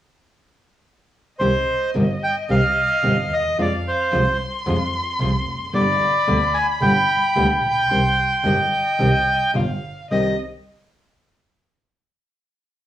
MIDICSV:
0, 0, Header, 1, 5, 480
1, 0, Start_track
1, 0, Key_signature, -3, "minor"
1, 0, Tempo, 547445
1, 1228, Time_signature, 4, 2, 24, 8
1, 3142, Tempo, 540054
1, 6982, Tempo, 548948
1, 11316, End_track
2, 0, Start_track
2, 0, Title_t, "Violin"
2, 0, Program_c, 0, 40
2, 1229, Note_on_c, 0, 75, 80
2, 3151, Note_on_c, 0, 77, 77
2, 3165, Note_off_c, 0, 75, 0
2, 3614, Note_on_c, 0, 84, 103
2, 3627, Note_off_c, 0, 77, 0
2, 5068, Note_on_c, 0, 83, 107
2, 5082, Note_off_c, 0, 84, 0
2, 6966, Note_off_c, 0, 83, 0
2, 6971, Note_on_c, 0, 84, 78
2, 7466, Note_on_c, 0, 75, 75
2, 7479, Note_off_c, 0, 84, 0
2, 8431, Note_on_c, 0, 77, 65
2, 8444, Note_off_c, 0, 75, 0
2, 8903, Note_off_c, 0, 77, 0
2, 8908, Note_on_c, 0, 75, 56
2, 9133, Note_off_c, 0, 75, 0
2, 11316, End_track
3, 0, Start_track
3, 0, Title_t, "Bandoneon"
3, 0, Program_c, 1, 23
3, 1221, Note_on_c, 1, 72, 84
3, 1671, Note_off_c, 1, 72, 0
3, 1960, Note_on_c, 1, 79, 75
3, 2065, Note_off_c, 1, 79, 0
3, 2201, Note_on_c, 1, 77, 88
3, 2924, Note_on_c, 1, 75, 78
3, 2932, Note_off_c, 1, 77, 0
3, 3137, Note_off_c, 1, 75, 0
3, 3169, Note_on_c, 1, 74, 68
3, 3272, Note_off_c, 1, 74, 0
3, 3405, Note_on_c, 1, 72, 67
3, 3843, Note_off_c, 1, 72, 0
3, 5063, Note_on_c, 1, 74, 79
3, 5772, Note_on_c, 1, 80, 73
3, 5802, Note_off_c, 1, 74, 0
3, 5882, Note_off_c, 1, 80, 0
3, 6020, Note_on_c, 1, 79, 91
3, 8387, Note_off_c, 1, 79, 0
3, 8914, Note_on_c, 1, 75, 68
3, 9136, Note_off_c, 1, 75, 0
3, 11316, End_track
4, 0, Start_track
4, 0, Title_t, "Nylon-string guitar"
4, 0, Program_c, 2, 24
4, 1229, Note_on_c, 2, 48, 61
4, 1234, Note_on_c, 2, 51, 64
4, 1234, Note_on_c, 2, 55, 68
4, 1234, Note_on_c, 2, 60, 74
4, 1235, Note_on_c, 2, 67, 74
4, 1308, Note_off_c, 2, 48, 0
4, 1310, Note_off_c, 2, 51, 0
4, 1310, Note_off_c, 2, 55, 0
4, 1310, Note_off_c, 2, 60, 0
4, 1310, Note_off_c, 2, 67, 0
4, 1705, Note_on_c, 2, 48, 65
4, 1706, Note_on_c, 2, 51, 73
4, 1709, Note_on_c, 2, 55, 71
4, 1714, Note_on_c, 2, 67, 75
4, 1717, Note_on_c, 2, 60, 81
4, 1785, Note_off_c, 2, 48, 0
4, 1786, Note_off_c, 2, 51, 0
4, 1787, Note_off_c, 2, 55, 0
4, 1790, Note_off_c, 2, 67, 0
4, 1791, Note_off_c, 2, 60, 0
4, 2187, Note_on_c, 2, 48, 69
4, 2188, Note_on_c, 2, 55, 80
4, 2193, Note_on_c, 2, 51, 75
4, 2194, Note_on_c, 2, 67, 77
4, 2195, Note_on_c, 2, 60, 77
4, 2264, Note_off_c, 2, 48, 0
4, 2264, Note_off_c, 2, 55, 0
4, 2267, Note_off_c, 2, 51, 0
4, 2268, Note_off_c, 2, 60, 0
4, 2268, Note_off_c, 2, 67, 0
4, 2655, Note_on_c, 2, 48, 62
4, 2659, Note_on_c, 2, 51, 65
4, 2661, Note_on_c, 2, 55, 69
4, 2662, Note_on_c, 2, 67, 79
4, 2666, Note_on_c, 2, 60, 70
4, 2738, Note_off_c, 2, 48, 0
4, 2740, Note_off_c, 2, 51, 0
4, 2740, Note_off_c, 2, 55, 0
4, 2741, Note_off_c, 2, 67, 0
4, 2743, Note_off_c, 2, 60, 0
4, 3144, Note_on_c, 2, 48, 59
4, 3144, Note_on_c, 2, 53, 67
4, 3145, Note_on_c, 2, 60, 66
4, 3147, Note_on_c, 2, 65, 81
4, 3150, Note_on_c, 2, 56, 69
4, 3222, Note_off_c, 2, 48, 0
4, 3223, Note_off_c, 2, 53, 0
4, 3223, Note_off_c, 2, 60, 0
4, 3224, Note_off_c, 2, 65, 0
4, 3225, Note_off_c, 2, 56, 0
4, 3618, Note_on_c, 2, 48, 80
4, 3620, Note_on_c, 2, 53, 78
4, 3622, Note_on_c, 2, 56, 76
4, 3622, Note_on_c, 2, 60, 83
4, 3623, Note_on_c, 2, 65, 88
4, 3700, Note_off_c, 2, 48, 0
4, 3701, Note_off_c, 2, 53, 0
4, 3702, Note_off_c, 2, 56, 0
4, 3702, Note_off_c, 2, 60, 0
4, 3703, Note_off_c, 2, 65, 0
4, 4098, Note_on_c, 2, 48, 73
4, 4104, Note_on_c, 2, 53, 74
4, 4104, Note_on_c, 2, 56, 73
4, 4107, Note_on_c, 2, 60, 82
4, 4114, Note_on_c, 2, 65, 78
4, 4180, Note_off_c, 2, 48, 0
4, 4183, Note_off_c, 2, 53, 0
4, 4183, Note_off_c, 2, 56, 0
4, 4185, Note_off_c, 2, 60, 0
4, 4188, Note_off_c, 2, 65, 0
4, 4586, Note_on_c, 2, 48, 67
4, 4589, Note_on_c, 2, 53, 70
4, 4591, Note_on_c, 2, 56, 70
4, 4591, Note_on_c, 2, 60, 70
4, 4595, Note_on_c, 2, 65, 82
4, 4663, Note_off_c, 2, 48, 0
4, 4664, Note_off_c, 2, 53, 0
4, 4665, Note_off_c, 2, 56, 0
4, 4665, Note_off_c, 2, 60, 0
4, 4668, Note_off_c, 2, 65, 0
4, 5048, Note_on_c, 2, 47, 71
4, 5051, Note_on_c, 2, 50, 79
4, 5051, Note_on_c, 2, 59, 81
4, 5052, Note_on_c, 2, 55, 74
4, 5058, Note_on_c, 2, 67, 74
4, 5133, Note_off_c, 2, 47, 0
4, 5135, Note_off_c, 2, 50, 0
4, 5135, Note_off_c, 2, 55, 0
4, 5135, Note_off_c, 2, 59, 0
4, 5138, Note_off_c, 2, 67, 0
4, 5527, Note_on_c, 2, 47, 76
4, 5534, Note_on_c, 2, 50, 87
4, 5534, Note_on_c, 2, 59, 85
4, 5539, Note_on_c, 2, 55, 85
4, 5540, Note_on_c, 2, 67, 80
4, 5612, Note_off_c, 2, 47, 0
4, 5615, Note_off_c, 2, 59, 0
4, 5616, Note_off_c, 2, 50, 0
4, 5618, Note_off_c, 2, 55, 0
4, 5618, Note_off_c, 2, 67, 0
4, 6012, Note_on_c, 2, 47, 72
4, 6016, Note_on_c, 2, 50, 68
4, 6018, Note_on_c, 2, 55, 78
4, 6021, Note_on_c, 2, 59, 80
4, 6025, Note_on_c, 2, 67, 85
4, 6094, Note_off_c, 2, 47, 0
4, 6097, Note_off_c, 2, 50, 0
4, 6097, Note_off_c, 2, 55, 0
4, 6099, Note_off_c, 2, 59, 0
4, 6101, Note_off_c, 2, 67, 0
4, 6492, Note_on_c, 2, 47, 71
4, 6497, Note_on_c, 2, 50, 71
4, 6498, Note_on_c, 2, 59, 77
4, 6498, Note_on_c, 2, 67, 76
4, 6500, Note_on_c, 2, 55, 79
4, 6575, Note_off_c, 2, 47, 0
4, 6577, Note_off_c, 2, 50, 0
4, 6578, Note_off_c, 2, 59, 0
4, 6578, Note_off_c, 2, 67, 0
4, 6579, Note_off_c, 2, 55, 0
4, 6982, Note_on_c, 2, 48, 68
4, 6983, Note_on_c, 2, 51, 69
4, 6984, Note_on_c, 2, 60, 70
4, 6986, Note_on_c, 2, 55, 67
4, 6988, Note_on_c, 2, 67, 76
4, 7059, Note_off_c, 2, 48, 0
4, 7060, Note_off_c, 2, 51, 0
4, 7060, Note_off_c, 2, 60, 0
4, 7061, Note_off_c, 2, 55, 0
4, 7062, Note_off_c, 2, 67, 0
4, 7450, Note_on_c, 2, 48, 68
4, 7459, Note_on_c, 2, 51, 82
4, 7459, Note_on_c, 2, 55, 82
4, 7461, Note_on_c, 2, 60, 79
4, 7466, Note_on_c, 2, 67, 86
4, 7533, Note_off_c, 2, 48, 0
4, 7537, Note_off_c, 2, 51, 0
4, 7537, Note_off_c, 2, 55, 0
4, 7538, Note_off_c, 2, 60, 0
4, 7541, Note_off_c, 2, 67, 0
4, 7927, Note_on_c, 2, 51, 73
4, 7931, Note_on_c, 2, 55, 75
4, 7932, Note_on_c, 2, 48, 76
4, 7933, Note_on_c, 2, 60, 86
4, 7939, Note_on_c, 2, 67, 81
4, 8011, Note_off_c, 2, 51, 0
4, 8013, Note_off_c, 2, 48, 0
4, 8013, Note_off_c, 2, 55, 0
4, 8014, Note_off_c, 2, 60, 0
4, 8017, Note_off_c, 2, 67, 0
4, 8410, Note_on_c, 2, 55, 64
4, 8420, Note_on_c, 2, 59, 73
4, 8426, Note_on_c, 2, 65, 74
4, 8496, Note_off_c, 2, 55, 0
4, 8501, Note_off_c, 2, 59, 0
4, 8504, Note_off_c, 2, 65, 0
4, 8910, Note_on_c, 2, 48, 60
4, 8911, Note_on_c, 2, 55, 66
4, 8912, Note_on_c, 2, 51, 65
4, 8916, Note_on_c, 2, 60, 68
4, 8925, Note_on_c, 2, 67, 77
4, 9103, Note_off_c, 2, 48, 0
4, 9103, Note_off_c, 2, 55, 0
4, 9104, Note_off_c, 2, 51, 0
4, 9106, Note_off_c, 2, 60, 0
4, 9110, Note_off_c, 2, 67, 0
4, 11316, End_track
5, 0, Start_track
5, 0, Title_t, "Double bass"
5, 0, Program_c, 3, 43
5, 1230, Note_on_c, 3, 36, 77
5, 1431, Note_off_c, 3, 36, 0
5, 1710, Note_on_c, 3, 31, 77
5, 1910, Note_off_c, 3, 31, 0
5, 2186, Note_on_c, 3, 36, 84
5, 2386, Note_off_c, 3, 36, 0
5, 2662, Note_on_c, 3, 31, 76
5, 2864, Note_off_c, 3, 31, 0
5, 2900, Note_on_c, 3, 39, 48
5, 3132, Note_off_c, 3, 39, 0
5, 3138, Note_on_c, 3, 41, 72
5, 3343, Note_off_c, 3, 41, 0
5, 3619, Note_on_c, 3, 36, 82
5, 3824, Note_off_c, 3, 36, 0
5, 4101, Note_on_c, 3, 41, 88
5, 4304, Note_off_c, 3, 41, 0
5, 4575, Note_on_c, 3, 36, 87
5, 4780, Note_off_c, 3, 36, 0
5, 4822, Note_on_c, 3, 29, 48
5, 5049, Note_off_c, 3, 29, 0
5, 5055, Note_on_c, 3, 31, 76
5, 5260, Note_off_c, 3, 31, 0
5, 5540, Note_on_c, 3, 38, 85
5, 5741, Note_off_c, 3, 38, 0
5, 6013, Note_on_c, 3, 31, 92
5, 6218, Note_off_c, 3, 31, 0
5, 6501, Note_on_c, 3, 38, 84
5, 6703, Note_off_c, 3, 38, 0
5, 6742, Note_on_c, 3, 34, 48
5, 6972, Note_off_c, 3, 34, 0
5, 6977, Note_on_c, 3, 36, 80
5, 7179, Note_off_c, 3, 36, 0
5, 7453, Note_on_c, 3, 31, 84
5, 7657, Note_off_c, 3, 31, 0
5, 7934, Note_on_c, 3, 36, 83
5, 8138, Note_off_c, 3, 36, 0
5, 8417, Note_on_c, 3, 31, 75
5, 8625, Note_off_c, 3, 31, 0
5, 8905, Note_on_c, 3, 36, 45
5, 9109, Note_off_c, 3, 36, 0
5, 11316, End_track
0, 0, End_of_file